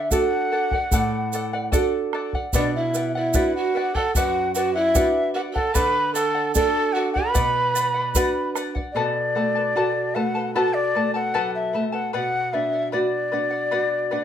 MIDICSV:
0, 0, Header, 1, 7, 480
1, 0, Start_track
1, 0, Tempo, 804290
1, 1515, Time_signature, 4, 2, 24, 8
1, 4389, Tempo, 793651
1, 8555, End_track
2, 0, Start_track
2, 0, Title_t, "Quena"
2, 0, Program_c, 0, 77
2, 0, Note_on_c, 0, 76, 87
2, 66, Note_on_c, 0, 78, 99
2, 75, Note_off_c, 0, 76, 0
2, 1032, Note_off_c, 0, 78, 0
2, 1525, Note_on_c, 0, 74, 74
2, 1632, Note_off_c, 0, 74, 0
2, 1643, Note_on_c, 0, 76, 71
2, 1863, Note_off_c, 0, 76, 0
2, 1880, Note_on_c, 0, 76, 77
2, 2101, Note_off_c, 0, 76, 0
2, 2118, Note_on_c, 0, 78, 83
2, 2358, Note_on_c, 0, 81, 94
2, 2367, Note_off_c, 0, 78, 0
2, 2472, Note_off_c, 0, 81, 0
2, 2476, Note_on_c, 0, 78, 96
2, 2699, Note_off_c, 0, 78, 0
2, 2711, Note_on_c, 0, 78, 84
2, 2825, Note_off_c, 0, 78, 0
2, 2829, Note_on_c, 0, 76, 98
2, 3167, Note_off_c, 0, 76, 0
2, 3194, Note_on_c, 0, 78, 89
2, 3230, Note_off_c, 0, 78, 0
2, 3311, Note_on_c, 0, 81, 98
2, 3430, Note_on_c, 0, 83, 111
2, 3439, Note_off_c, 0, 81, 0
2, 3662, Note_off_c, 0, 83, 0
2, 3665, Note_on_c, 0, 81, 99
2, 3890, Note_off_c, 0, 81, 0
2, 3908, Note_on_c, 0, 81, 111
2, 4135, Note_on_c, 0, 78, 92
2, 4144, Note_off_c, 0, 81, 0
2, 4253, Note_off_c, 0, 78, 0
2, 4256, Note_on_c, 0, 83, 104
2, 5081, Note_off_c, 0, 83, 0
2, 5337, Note_on_c, 0, 74, 92
2, 6080, Note_on_c, 0, 78, 88
2, 6089, Note_off_c, 0, 74, 0
2, 6314, Note_off_c, 0, 78, 0
2, 6317, Note_on_c, 0, 83, 97
2, 6342, Note_on_c, 0, 81, 105
2, 6348, Note_off_c, 0, 83, 0
2, 6435, Note_on_c, 0, 74, 93
2, 6444, Note_off_c, 0, 81, 0
2, 6675, Note_off_c, 0, 74, 0
2, 6685, Note_on_c, 0, 78, 82
2, 6904, Note_off_c, 0, 78, 0
2, 6927, Note_on_c, 0, 76, 78
2, 7144, Note_off_c, 0, 76, 0
2, 7160, Note_on_c, 0, 78, 84
2, 7269, Note_off_c, 0, 78, 0
2, 7286, Note_on_c, 0, 78, 97
2, 7522, Note_on_c, 0, 76, 86
2, 7531, Note_off_c, 0, 78, 0
2, 7752, Note_off_c, 0, 76, 0
2, 7756, Note_on_c, 0, 74, 88
2, 8555, Note_off_c, 0, 74, 0
2, 8555, End_track
3, 0, Start_track
3, 0, Title_t, "Charango"
3, 0, Program_c, 1, 24
3, 0, Note_on_c, 1, 74, 41
3, 0, Note_on_c, 1, 78, 50
3, 67, Note_off_c, 1, 74, 0
3, 71, Note_off_c, 1, 78, 0
3, 72, Note_on_c, 1, 69, 73
3, 74, Note_on_c, 1, 74, 66
3, 78, Note_on_c, 1, 78, 67
3, 302, Note_off_c, 1, 69, 0
3, 307, Note_off_c, 1, 74, 0
3, 309, Note_on_c, 1, 69, 60
3, 310, Note_off_c, 1, 78, 0
3, 314, Note_on_c, 1, 74, 58
3, 318, Note_on_c, 1, 78, 64
3, 428, Note_off_c, 1, 78, 0
3, 431, Note_off_c, 1, 69, 0
3, 433, Note_off_c, 1, 74, 0
3, 435, Note_on_c, 1, 78, 48
3, 444, Note_on_c, 1, 74, 44
3, 550, Note_off_c, 1, 74, 0
3, 550, Note_off_c, 1, 78, 0
3, 556, Note_on_c, 1, 69, 82
3, 558, Note_on_c, 1, 74, 78
3, 558, Note_on_c, 1, 78, 84
3, 791, Note_off_c, 1, 69, 0
3, 794, Note_off_c, 1, 74, 0
3, 796, Note_off_c, 1, 78, 0
3, 798, Note_on_c, 1, 69, 64
3, 802, Note_on_c, 1, 74, 65
3, 806, Note_on_c, 1, 78, 75
3, 907, Note_off_c, 1, 78, 0
3, 913, Note_off_c, 1, 74, 0
3, 914, Note_on_c, 1, 78, 62
3, 916, Note_off_c, 1, 69, 0
3, 921, Note_on_c, 1, 74, 51
3, 1021, Note_off_c, 1, 74, 0
3, 1025, Note_off_c, 1, 78, 0
3, 1026, Note_on_c, 1, 69, 87
3, 1029, Note_on_c, 1, 74, 95
3, 1032, Note_on_c, 1, 78, 94
3, 1266, Note_off_c, 1, 69, 0
3, 1272, Note_off_c, 1, 74, 0
3, 1273, Note_on_c, 1, 69, 55
3, 1274, Note_off_c, 1, 78, 0
3, 1279, Note_on_c, 1, 74, 68
3, 1282, Note_on_c, 1, 78, 63
3, 1394, Note_off_c, 1, 69, 0
3, 1394, Note_off_c, 1, 78, 0
3, 1397, Note_off_c, 1, 74, 0
3, 1401, Note_on_c, 1, 78, 53
3, 1407, Note_on_c, 1, 74, 39
3, 1513, Note_off_c, 1, 74, 0
3, 1516, Note_off_c, 1, 78, 0
3, 1517, Note_on_c, 1, 71, 77
3, 1520, Note_on_c, 1, 74, 84
3, 1523, Note_on_c, 1, 78, 94
3, 1751, Note_off_c, 1, 71, 0
3, 1756, Note_off_c, 1, 74, 0
3, 1758, Note_on_c, 1, 71, 57
3, 1760, Note_off_c, 1, 78, 0
3, 1764, Note_on_c, 1, 74, 57
3, 1769, Note_on_c, 1, 78, 56
3, 1874, Note_off_c, 1, 78, 0
3, 1877, Note_off_c, 1, 71, 0
3, 1880, Note_off_c, 1, 74, 0
3, 1881, Note_on_c, 1, 78, 53
3, 1893, Note_on_c, 1, 74, 41
3, 1991, Note_off_c, 1, 74, 0
3, 1996, Note_on_c, 1, 71, 69
3, 1998, Note_on_c, 1, 74, 77
3, 1999, Note_off_c, 1, 78, 0
3, 2005, Note_on_c, 1, 78, 74
3, 2230, Note_off_c, 1, 71, 0
3, 2237, Note_off_c, 1, 74, 0
3, 2237, Note_on_c, 1, 71, 61
3, 2240, Note_off_c, 1, 78, 0
3, 2244, Note_on_c, 1, 74, 60
3, 2249, Note_on_c, 1, 78, 67
3, 2357, Note_off_c, 1, 71, 0
3, 2360, Note_off_c, 1, 74, 0
3, 2362, Note_off_c, 1, 78, 0
3, 2369, Note_on_c, 1, 78, 55
3, 2378, Note_on_c, 1, 74, 42
3, 2479, Note_off_c, 1, 74, 0
3, 2481, Note_off_c, 1, 78, 0
3, 2483, Note_on_c, 1, 71, 81
3, 2487, Note_on_c, 1, 74, 79
3, 2488, Note_on_c, 1, 78, 99
3, 2714, Note_off_c, 1, 71, 0
3, 2719, Note_off_c, 1, 74, 0
3, 2721, Note_on_c, 1, 71, 60
3, 2722, Note_off_c, 1, 78, 0
3, 2726, Note_on_c, 1, 74, 63
3, 2730, Note_on_c, 1, 78, 60
3, 2831, Note_off_c, 1, 78, 0
3, 2838, Note_off_c, 1, 71, 0
3, 2838, Note_on_c, 1, 78, 60
3, 2840, Note_off_c, 1, 74, 0
3, 2849, Note_on_c, 1, 74, 45
3, 2949, Note_off_c, 1, 74, 0
3, 2951, Note_off_c, 1, 78, 0
3, 2955, Note_on_c, 1, 71, 86
3, 2956, Note_on_c, 1, 74, 81
3, 2958, Note_on_c, 1, 78, 97
3, 3186, Note_off_c, 1, 71, 0
3, 3190, Note_off_c, 1, 74, 0
3, 3193, Note_off_c, 1, 78, 0
3, 3193, Note_on_c, 1, 71, 55
3, 3197, Note_on_c, 1, 74, 55
3, 3201, Note_on_c, 1, 78, 68
3, 3308, Note_off_c, 1, 78, 0
3, 3313, Note_off_c, 1, 71, 0
3, 3313, Note_off_c, 1, 74, 0
3, 3315, Note_on_c, 1, 78, 58
3, 3320, Note_on_c, 1, 74, 43
3, 3424, Note_off_c, 1, 74, 0
3, 3427, Note_off_c, 1, 78, 0
3, 3427, Note_on_c, 1, 69, 80
3, 3431, Note_on_c, 1, 74, 78
3, 3434, Note_on_c, 1, 78, 78
3, 3656, Note_off_c, 1, 69, 0
3, 3662, Note_off_c, 1, 74, 0
3, 3663, Note_on_c, 1, 69, 56
3, 3668, Note_off_c, 1, 78, 0
3, 3670, Note_on_c, 1, 74, 64
3, 3675, Note_on_c, 1, 78, 66
3, 3780, Note_off_c, 1, 78, 0
3, 3786, Note_off_c, 1, 74, 0
3, 3787, Note_off_c, 1, 69, 0
3, 3788, Note_on_c, 1, 78, 48
3, 3793, Note_on_c, 1, 74, 40
3, 3909, Note_off_c, 1, 78, 0
3, 3910, Note_off_c, 1, 74, 0
3, 3913, Note_on_c, 1, 69, 66
3, 3918, Note_on_c, 1, 74, 79
3, 3920, Note_on_c, 1, 78, 75
3, 4147, Note_off_c, 1, 69, 0
3, 4152, Note_off_c, 1, 74, 0
3, 4154, Note_off_c, 1, 78, 0
3, 4154, Note_on_c, 1, 69, 54
3, 4159, Note_on_c, 1, 74, 63
3, 4161, Note_on_c, 1, 78, 63
3, 4261, Note_off_c, 1, 78, 0
3, 4268, Note_on_c, 1, 78, 54
3, 4270, Note_off_c, 1, 74, 0
3, 4271, Note_off_c, 1, 69, 0
3, 4277, Note_on_c, 1, 74, 41
3, 4376, Note_off_c, 1, 74, 0
3, 4377, Note_off_c, 1, 78, 0
3, 4380, Note_on_c, 1, 71, 84
3, 4383, Note_on_c, 1, 74, 82
3, 4384, Note_on_c, 1, 78, 83
3, 4613, Note_off_c, 1, 71, 0
3, 4620, Note_off_c, 1, 74, 0
3, 4620, Note_on_c, 1, 71, 53
3, 4622, Note_off_c, 1, 78, 0
3, 4627, Note_on_c, 1, 74, 57
3, 4629, Note_on_c, 1, 78, 62
3, 4736, Note_off_c, 1, 78, 0
3, 4743, Note_on_c, 1, 78, 57
3, 4745, Note_off_c, 1, 71, 0
3, 4745, Note_off_c, 1, 74, 0
3, 4752, Note_on_c, 1, 74, 45
3, 4867, Note_off_c, 1, 78, 0
3, 4872, Note_off_c, 1, 74, 0
3, 4873, Note_on_c, 1, 71, 94
3, 4878, Note_on_c, 1, 74, 98
3, 4879, Note_on_c, 1, 78, 85
3, 5105, Note_off_c, 1, 71, 0
3, 5110, Note_off_c, 1, 74, 0
3, 5113, Note_on_c, 1, 71, 55
3, 5116, Note_off_c, 1, 78, 0
3, 5118, Note_on_c, 1, 74, 61
3, 5122, Note_on_c, 1, 78, 64
3, 5225, Note_off_c, 1, 78, 0
3, 5232, Note_on_c, 1, 78, 63
3, 5233, Note_off_c, 1, 71, 0
3, 5234, Note_off_c, 1, 74, 0
3, 5241, Note_on_c, 1, 74, 45
3, 5350, Note_off_c, 1, 74, 0
3, 5351, Note_off_c, 1, 78, 0
3, 5357, Note_on_c, 1, 74, 68
3, 5358, Note_on_c, 1, 71, 77
3, 5359, Note_on_c, 1, 78, 74
3, 5361, Note_on_c, 1, 69, 75
3, 5363, Note_on_c, 1, 81, 79
3, 5589, Note_off_c, 1, 78, 0
3, 5594, Note_off_c, 1, 69, 0
3, 5595, Note_off_c, 1, 71, 0
3, 5596, Note_off_c, 1, 74, 0
3, 5597, Note_on_c, 1, 78, 49
3, 5599, Note_off_c, 1, 81, 0
3, 5601, Note_on_c, 1, 69, 51
3, 5602, Note_on_c, 1, 71, 49
3, 5606, Note_on_c, 1, 81, 56
3, 5711, Note_off_c, 1, 81, 0
3, 5715, Note_off_c, 1, 78, 0
3, 5717, Note_off_c, 1, 69, 0
3, 5718, Note_off_c, 1, 71, 0
3, 5719, Note_on_c, 1, 81, 47
3, 5724, Note_on_c, 1, 69, 41
3, 5729, Note_on_c, 1, 71, 37
3, 5837, Note_off_c, 1, 81, 0
3, 5839, Note_off_c, 1, 69, 0
3, 5839, Note_off_c, 1, 71, 0
3, 5842, Note_on_c, 1, 74, 61
3, 5846, Note_on_c, 1, 71, 59
3, 5846, Note_on_c, 1, 78, 64
3, 5848, Note_on_c, 1, 69, 65
3, 5849, Note_on_c, 1, 81, 75
3, 6071, Note_off_c, 1, 78, 0
3, 6076, Note_off_c, 1, 71, 0
3, 6078, Note_on_c, 1, 78, 47
3, 6079, Note_off_c, 1, 69, 0
3, 6079, Note_off_c, 1, 74, 0
3, 6079, Note_off_c, 1, 81, 0
3, 6084, Note_on_c, 1, 71, 57
3, 6086, Note_on_c, 1, 81, 57
3, 6087, Note_on_c, 1, 69, 54
3, 6192, Note_off_c, 1, 81, 0
3, 6197, Note_off_c, 1, 78, 0
3, 6198, Note_off_c, 1, 69, 0
3, 6199, Note_off_c, 1, 71, 0
3, 6199, Note_on_c, 1, 81, 52
3, 6205, Note_on_c, 1, 69, 45
3, 6209, Note_on_c, 1, 71, 42
3, 6317, Note_off_c, 1, 81, 0
3, 6318, Note_off_c, 1, 69, 0
3, 6320, Note_off_c, 1, 71, 0
3, 6324, Note_on_c, 1, 74, 66
3, 6325, Note_on_c, 1, 69, 85
3, 6325, Note_on_c, 1, 78, 76
3, 6328, Note_on_c, 1, 71, 83
3, 6330, Note_on_c, 1, 81, 80
3, 6556, Note_off_c, 1, 71, 0
3, 6556, Note_off_c, 1, 78, 0
3, 6560, Note_off_c, 1, 74, 0
3, 6561, Note_off_c, 1, 69, 0
3, 6563, Note_off_c, 1, 81, 0
3, 6563, Note_on_c, 1, 78, 51
3, 6564, Note_on_c, 1, 71, 52
3, 6568, Note_on_c, 1, 69, 56
3, 6571, Note_on_c, 1, 81, 62
3, 6671, Note_off_c, 1, 81, 0
3, 6676, Note_off_c, 1, 69, 0
3, 6677, Note_off_c, 1, 71, 0
3, 6678, Note_on_c, 1, 81, 51
3, 6679, Note_off_c, 1, 78, 0
3, 6683, Note_on_c, 1, 69, 50
3, 6684, Note_on_c, 1, 71, 40
3, 6795, Note_off_c, 1, 69, 0
3, 6796, Note_off_c, 1, 71, 0
3, 6797, Note_off_c, 1, 81, 0
3, 6799, Note_on_c, 1, 74, 76
3, 6799, Note_on_c, 1, 78, 75
3, 6802, Note_on_c, 1, 69, 85
3, 6803, Note_on_c, 1, 71, 80
3, 6803, Note_on_c, 1, 81, 85
3, 7029, Note_off_c, 1, 78, 0
3, 7036, Note_off_c, 1, 71, 0
3, 7037, Note_off_c, 1, 74, 0
3, 7037, Note_on_c, 1, 78, 49
3, 7039, Note_off_c, 1, 69, 0
3, 7039, Note_off_c, 1, 81, 0
3, 7043, Note_on_c, 1, 71, 53
3, 7046, Note_on_c, 1, 69, 51
3, 7049, Note_on_c, 1, 81, 55
3, 7145, Note_off_c, 1, 81, 0
3, 7152, Note_off_c, 1, 69, 0
3, 7153, Note_on_c, 1, 81, 51
3, 7155, Note_off_c, 1, 71, 0
3, 7156, Note_off_c, 1, 78, 0
3, 7159, Note_on_c, 1, 69, 51
3, 7162, Note_on_c, 1, 71, 36
3, 7272, Note_off_c, 1, 71, 0
3, 7274, Note_off_c, 1, 81, 0
3, 7277, Note_off_c, 1, 69, 0
3, 7279, Note_on_c, 1, 71, 80
3, 7283, Note_on_c, 1, 78, 83
3, 7285, Note_on_c, 1, 74, 77
3, 7512, Note_off_c, 1, 71, 0
3, 7516, Note_off_c, 1, 74, 0
3, 7518, Note_off_c, 1, 78, 0
3, 7519, Note_on_c, 1, 71, 48
3, 7523, Note_on_c, 1, 74, 49
3, 7525, Note_on_c, 1, 78, 52
3, 7633, Note_off_c, 1, 78, 0
3, 7636, Note_off_c, 1, 71, 0
3, 7638, Note_off_c, 1, 74, 0
3, 7640, Note_on_c, 1, 78, 50
3, 7648, Note_on_c, 1, 74, 39
3, 7754, Note_off_c, 1, 74, 0
3, 7755, Note_off_c, 1, 78, 0
3, 7756, Note_on_c, 1, 71, 68
3, 7761, Note_on_c, 1, 74, 64
3, 7762, Note_on_c, 1, 78, 67
3, 7988, Note_off_c, 1, 71, 0
3, 7992, Note_off_c, 1, 74, 0
3, 7995, Note_on_c, 1, 71, 52
3, 7997, Note_off_c, 1, 78, 0
3, 7999, Note_on_c, 1, 74, 57
3, 8005, Note_on_c, 1, 78, 59
3, 8102, Note_off_c, 1, 78, 0
3, 8109, Note_on_c, 1, 78, 54
3, 8113, Note_off_c, 1, 71, 0
3, 8115, Note_off_c, 1, 74, 0
3, 8122, Note_on_c, 1, 74, 38
3, 8230, Note_off_c, 1, 74, 0
3, 8230, Note_off_c, 1, 78, 0
3, 8235, Note_on_c, 1, 71, 78
3, 8238, Note_on_c, 1, 74, 75
3, 8239, Note_on_c, 1, 78, 77
3, 8467, Note_off_c, 1, 71, 0
3, 8469, Note_off_c, 1, 74, 0
3, 8474, Note_off_c, 1, 78, 0
3, 8474, Note_on_c, 1, 71, 51
3, 8476, Note_on_c, 1, 74, 64
3, 8483, Note_on_c, 1, 78, 68
3, 8555, Note_off_c, 1, 71, 0
3, 8555, Note_off_c, 1, 74, 0
3, 8555, Note_off_c, 1, 78, 0
3, 8555, End_track
4, 0, Start_track
4, 0, Title_t, "Pan flute"
4, 0, Program_c, 2, 75
4, 1528, Note_on_c, 2, 62, 72
4, 1634, Note_off_c, 2, 62, 0
4, 1648, Note_on_c, 2, 64, 66
4, 1866, Note_off_c, 2, 64, 0
4, 1889, Note_on_c, 2, 64, 74
4, 2106, Note_off_c, 2, 64, 0
4, 2128, Note_on_c, 2, 66, 76
4, 2353, Note_on_c, 2, 69, 67
4, 2362, Note_off_c, 2, 66, 0
4, 2474, Note_off_c, 2, 69, 0
4, 2478, Note_on_c, 2, 66, 88
4, 2700, Note_off_c, 2, 66, 0
4, 2715, Note_on_c, 2, 66, 73
4, 2827, Note_off_c, 2, 66, 0
4, 2843, Note_on_c, 2, 64, 81
4, 3048, Note_off_c, 2, 64, 0
4, 3187, Note_on_c, 2, 66, 76
4, 3223, Note_off_c, 2, 66, 0
4, 3299, Note_on_c, 2, 69, 80
4, 3423, Note_on_c, 2, 71, 90
4, 3432, Note_off_c, 2, 69, 0
4, 3664, Note_off_c, 2, 71, 0
4, 3668, Note_on_c, 2, 69, 80
4, 3892, Note_off_c, 2, 69, 0
4, 3915, Note_on_c, 2, 69, 95
4, 4144, Note_on_c, 2, 66, 76
4, 4153, Note_off_c, 2, 69, 0
4, 4266, Note_off_c, 2, 66, 0
4, 4272, Note_on_c, 2, 71, 81
4, 5089, Note_off_c, 2, 71, 0
4, 8555, End_track
5, 0, Start_track
5, 0, Title_t, "Nylon-string guitar"
5, 0, Program_c, 3, 24
5, 64, Note_on_c, 3, 62, 49
5, 67, Note_on_c, 3, 66, 48
5, 69, Note_on_c, 3, 69, 58
5, 452, Note_off_c, 3, 62, 0
5, 454, Note_off_c, 3, 66, 0
5, 456, Note_off_c, 3, 69, 0
5, 544, Note_on_c, 3, 45, 59
5, 1016, Note_off_c, 3, 45, 0
5, 1029, Note_on_c, 3, 62, 51
5, 1032, Note_on_c, 3, 66, 42
5, 1038, Note_on_c, 3, 69, 56
5, 1416, Note_off_c, 3, 62, 0
5, 1418, Note_off_c, 3, 66, 0
5, 1422, Note_off_c, 3, 69, 0
5, 1512, Note_on_c, 3, 47, 73
5, 1980, Note_off_c, 3, 47, 0
5, 1995, Note_on_c, 3, 62, 50
5, 1997, Note_on_c, 3, 66, 44
5, 2001, Note_on_c, 3, 71, 57
5, 2379, Note_off_c, 3, 62, 0
5, 2381, Note_off_c, 3, 66, 0
5, 2383, Note_off_c, 3, 71, 0
5, 2479, Note_on_c, 3, 42, 63
5, 2942, Note_off_c, 3, 42, 0
5, 2953, Note_on_c, 3, 62, 51
5, 2955, Note_on_c, 3, 66, 45
5, 2959, Note_on_c, 3, 71, 56
5, 3336, Note_off_c, 3, 62, 0
5, 3338, Note_off_c, 3, 66, 0
5, 3340, Note_off_c, 3, 71, 0
5, 3434, Note_on_c, 3, 50, 63
5, 3897, Note_off_c, 3, 50, 0
5, 3908, Note_on_c, 3, 62, 51
5, 3911, Note_on_c, 3, 66, 45
5, 3914, Note_on_c, 3, 69, 58
5, 4291, Note_off_c, 3, 62, 0
5, 4293, Note_off_c, 3, 66, 0
5, 4293, Note_off_c, 3, 69, 0
5, 4386, Note_on_c, 3, 47, 60
5, 4855, Note_off_c, 3, 47, 0
5, 4870, Note_on_c, 3, 62, 43
5, 4876, Note_on_c, 3, 66, 40
5, 4876, Note_on_c, 3, 71, 52
5, 5256, Note_off_c, 3, 62, 0
5, 5259, Note_off_c, 3, 71, 0
5, 5260, Note_off_c, 3, 66, 0
5, 5352, Note_on_c, 3, 47, 58
5, 5600, Note_on_c, 3, 57, 52
5, 5830, Note_off_c, 3, 57, 0
5, 5841, Note_on_c, 3, 66, 48
5, 6071, Note_off_c, 3, 66, 0
5, 6084, Note_on_c, 3, 57, 53
5, 6313, Note_off_c, 3, 57, 0
5, 6325, Note_on_c, 3, 66, 54
5, 6553, Note_off_c, 3, 66, 0
5, 6567, Note_on_c, 3, 57, 52
5, 6794, Note_off_c, 3, 57, 0
5, 6808, Note_on_c, 3, 54, 48
5, 7035, Note_off_c, 3, 54, 0
5, 7045, Note_on_c, 3, 57, 53
5, 7250, Note_off_c, 3, 47, 0
5, 7272, Note_off_c, 3, 57, 0
5, 7285, Note_on_c, 3, 47, 61
5, 7530, Note_on_c, 3, 62, 51
5, 7754, Note_off_c, 3, 62, 0
5, 7767, Note_on_c, 3, 66, 53
5, 7992, Note_off_c, 3, 66, 0
5, 8005, Note_on_c, 3, 62, 54
5, 8231, Note_off_c, 3, 62, 0
5, 8245, Note_on_c, 3, 66, 52
5, 8470, Note_off_c, 3, 66, 0
5, 8485, Note_on_c, 3, 62, 52
5, 8555, Note_off_c, 3, 47, 0
5, 8555, Note_off_c, 3, 62, 0
5, 8555, End_track
6, 0, Start_track
6, 0, Title_t, "Bombo"
6, 66, Note_on_c, 9, 43, 64
6, 126, Note_off_c, 9, 43, 0
6, 426, Note_on_c, 9, 43, 62
6, 486, Note_off_c, 9, 43, 0
6, 547, Note_on_c, 9, 43, 81
6, 607, Note_off_c, 9, 43, 0
6, 1029, Note_on_c, 9, 43, 76
6, 1089, Note_off_c, 9, 43, 0
6, 1271, Note_on_c, 9, 37, 48
6, 1331, Note_off_c, 9, 37, 0
6, 1391, Note_on_c, 9, 43, 55
6, 1451, Note_off_c, 9, 43, 0
6, 1509, Note_on_c, 9, 43, 70
6, 1569, Note_off_c, 9, 43, 0
6, 1995, Note_on_c, 9, 43, 74
6, 2054, Note_off_c, 9, 43, 0
6, 2358, Note_on_c, 9, 43, 56
6, 2417, Note_off_c, 9, 43, 0
6, 2477, Note_on_c, 9, 43, 74
6, 2536, Note_off_c, 9, 43, 0
6, 2954, Note_on_c, 9, 43, 78
6, 3014, Note_off_c, 9, 43, 0
6, 3317, Note_on_c, 9, 43, 55
6, 3377, Note_off_c, 9, 43, 0
6, 3433, Note_on_c, 9, 43, 73
6, 3493, Note_off_c, 9, 43, 0
6, 3913, Note_on_c, 9, 43, 71
6, 3972, Note_off_c, 9, 43, 0
6, 4272, Note_on_c, 9, 43, 58
6, 4332, Note_off_c, 9, 43, 0
6, 4388, Note_on_c, 9, 43, 80
6, 4448, Note_off_c, 9, 43, 0
6, 4869, Note_on_c, 9, 43, 74
6, 4930, Note_off_c, 9, 43, 0
6, 5115, Note_on_c, 9, 37, 51
6, 5176, Note_off_c, 9, 37, 0
6, 5237, Note_on_c, 9, 43, 56
6, 5298, Note_off_c, 9, 43, 0
6, 8555, End_track
7, 0, Start_track
7, 0, Title_t, "Drums"
7, 68, Note_on_c, 9, 82, 91
7, 128, Note_off_c, 9, 82, 0
7, 549, Note_on_c, 9, 82, 103
7, 609, Note_off_c, 9, 82, 0
7, 791, Note_on_c, 9, 82, 72
7, 851, Note_off_c, 9, 82, 0
7, 1034, Note_on_c, 9, 82, 94
7, 1094, Note_off_c, 9, 82, 0
7, 1512, Note_on_c, 9, 82, 91
7, 1572, Note_off_c, 9, 82, 0
7, 1757, Note_on_c, 9, 82, 78
7, 1816, Note_off_c, 9, 82, 0
7, 1991, Note_on_c, 9, 82, 94
7, 2051, Note_off_c, 9, 82, 0
7, 2480, Note_on_c, 9, 82, 98
7, 2540, Note_off_c, 9, 82, 0
7, 2715, Note_on_c, 9, 82, 79
7, 2774, Note_off_c, 9, 82, 0
7, 2954, Note_on_c, 9, 82, 100
7, 3014, Note_off_c, 9, 82, 0
7, 3432, Note_on_c, 9, 82, 116
7, 3492, Note_off_c, 9, 82, 0
7, 3672, Note_on_c, 9, 82, 78
7, 3732, Note_off_c, 9, 82, 0
7, 3908, Note_on_c, 9, 82, 96
7, 3968, Note_off_c, 9, 82, 0
7, 4386, Note_on_c, 9, 82, 109
7, 4447, Note_off_c, 9, 82, 0
7, 4632, Note_on_c, 9, 82, 74
7, 4693, Note_off_c, 9, 82, 0
7, 4871, Note_on_c, 9, 82, 100
7, 4931, Note_off_c, 9, 82, 0
7, 5119, Note_on_c, 9, 82, 68
7, 5180, Note_off_c, 9, 82, 0
7, 8555, End_track
0, 0, End_of_file